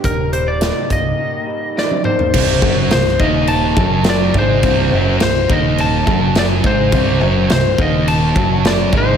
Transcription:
0.00 1.48 D#2 medium
0.00 0.32 G3 medium
0.00 0.60 G4 medium
0.04 0.70 D#1 medium
0.04 0.33 A#4 medium
0.04 kick loud
0.04 closed hi-hat medium
0.32 1.46 G3 medium
0.32 0.48 C5 medium
0.32 closed hi-hat medium
0.48 0.88 D5 medium
0.61 1.75 D#4 medium
0.61 snare loud
0.61 closed hi-hat medium
0.90 1.12 C1 medium
0.90 2.04 A#3 medium
0.90 2.02 D#5 medium
0.90 kick medium
0.90 closed hi-hat medium
1.19 2.34 D#3 medium
1.47 2.34 G3 medium
1.76 2.34 D#4 medium
1.76 2.05 D5 medium
1.76 snare soft
1.91 high tom medium
2.04 2.34 A#3 medium
2.04 2.91 C5 medium
2.04 mid tom medium
2.19 floor tom medium
2.34 2.61 C1 loud
2.34 2.61 C2 medium
2.34 2.62 C3 loud
2.34 kick loud
2.34 crash loud
2.34 crash medium
2.62 2.89 F#1 loud
2.62 2.90 F#2 medium
2.62 2.91 F#3 loud
2.62 kick loud
2.91 3.19 C1 medium
2.91 3.15 C2 medium
2.91 3.21 C5 medium
2.91 snare loud
2.91 crash medium
3.20 3.73 D#1 loud
3.20 3.77 D#2 loud
3.20 3.77 D#3 loud
3.20 3.50 D#5 medium
3.20 kick loud
3.47 4.08 A5 loud
3.47 crash medium
3.77 4.31 F#1 medium
3.77 4.34 F#2 loud
3.77 4.34 F#3 loud
3.77 kick loud
4.04 snare loud
4.04 crash medium
4.10 4.37 D5 medium
4.34 4.61 G#1 medium
4.34 4.63 G#2 medium
4.34 4.63 G#3 loud
4.34 kick loud
4.38 5.21 C5 medium
4.63 4.90 C1 loud
4.63 4.91 C2 loud
4.63 4.92 C3 loud
4.63 kick loud
4.63 crash medium
4.92 5.19 F#1 loud
4.92 5.21 F#2 loud
4.92 5.21 F#3 loud
5.20 5.48 C1 medium
5.20 5.44 C2 medium
5.20 5.51 C5 medium
5.20 snare loud
5.20 crash medium
5.49 6.03 D#1 loud
5.49 6.06 D#2 medium
5.49 6.06 D#3 loud
5.49 5.81 D#5 medium
5.49 kick loud
5.78 6.38 A5 loud
5.78 crash medium
6.07 6.60 F#1 medium
6.07 6.64 F#2 medium
6.07 6.64 F#3 loud
6.07 kick loud
6.35 6.46 D5 loud
6.35 snare loud
6.35 crash medium
6.64 6.91 G#1 loud
6.64 6.92 G#2 medium
6.64 6.93 G#3 loud
6.64 7.51 C5 medium
6.64 kick loud
6.92 7.19 C1 loud
6.92 7.21 C2 medium
6.92 7.21 C3 loud
6.92 kick loud
6.92 crash medium
7.21 7.49 F#1 loud
7.21 7.49 F#2 medium
7.21 7.50 F#3 loud
7.50 7.77 C1 medium
7.50 7.74 C2 medium
7.50 7.81 C5 medium
7.50 snare loud
7.50 crash medium
7.78 8.32 D#1 loud
7.78 8.35 D#2 loud
7.78 8.36 D#3 loud
7.78 8.10 D#5 medium
7.78 kick loud
8.08 8.67 A5 loud
8.08 crash medium
8.36 8.89 F#1 loud
8.36 8.93 F#2 medium
8.36 8.93 F#3 loud
8.36 kick loud
8.65 8.96 D5 medium
8.65 snare loud
8.65 crash medium
8.93 9.17 G#1 medium
8.93 9.17 G#2 medium
8.93 9.17 G#3 loud
8.93 kick loud
8.97 9.17 C5 medium

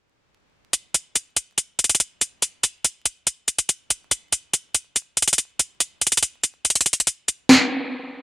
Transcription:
0.73 closed hi-hat medium
0.94 closed hi-hat medium
1.16 closed hi-hat medium
1.36 closed hi-hat medium
1.58 closed hi-hat medium
1.79 closed hi-hat medium
1.84 closed hi-hat medium
1.89 closed hi-hat medium
1.95 closed hi-hat medium
2.00 closed hi-hat medium
2.21 closed hi-hat medium
2.42 closed hi-hat medium
2.63 closed hi-hat medium
2.84 closed hi-hat medium
3.05 closed hi-hat medium
3.27 closed hi-hat medium
3.48 closed hi-hat medium
3.58 closed hi-hat medium
3.69 closed hi-hat medium
3.90 closed hi-hat medium
4.11 closed hi-hat medium
4.32 closed hi-hat medium
4.54 closed hi-hat medium
4.74 closed hi-hat medium
4.96 closed hi-hat medium
5.17 closed hi-hat medium
5.22 closed hi-hat medium
5.27 closed hi-hat medium
5.33 closed hi-hat medium
5.38 closed hi-hat medium
5.59 closed hi-hat medium
5.80 closed hi-hat medium
6.01 closed hi-hat medium
6.07 closed hi-hat medium
6.12 closed hi-hat medium
6.17 closed hi-hat medium
6.23 closed hi-hat medium
6.43 closed hi-hat medium
6.65 closed hi-hat medium
6.70 closed hi-hat medium
6.75 closed hi-hat medium
6.81 closed hi-hat medium
6.86 closed hi-hat medium
6.93 closed hi-hat medium
7.00 closed hi-hat medium
7.07 closed hi-hat medium
7.28 closed hi-hat medium
7.49 snare loud

